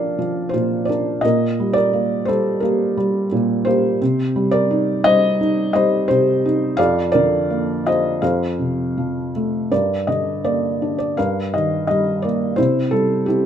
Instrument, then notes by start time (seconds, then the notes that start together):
felt piano
Already playing: A#2 F3 D4 A#4 D5 F5
0.19 F3
0.49 C5
0.53 A#2 F4
0.85 A#4 D5
0.89 D4
1.21 A#2 A#4 D#5
1.60 G3
1.73 A#4 D5
1.93 A#3
2.25 G3 A4 C5
2.60 A#3 G4 A#4
2.97 G3
3.32 A#2
3.65 A#3 G4 C5
4.01 C3
4.36 G3
4.51 A#4 D5
4.71 D#4
5.04 G3 C5 D#5
5.41 D#4
5.73 G3 C5 D#5
6.08 C3 G4 C5
6.45 D#4
6.77 F2 D5 F5
7.12 D3 A#4 D5
7.50 A#3
7.86 F4 C5 D#5
8.22 F2 C5 F5
8.59 C3
8.98 F3
9.36 A3
9.71 G2 A#4 D5
10.07 D3 D#5
10.44 A#3 D5
10.82 D4
10.99 D5
11.17 G2 A#4 F5
11.54 D#3 D#5
11.87 G3 D#5
12.22 A#3 D5
12.56 C3 E4 C5
12.91 G3 A4
13.26 C4 E4 G4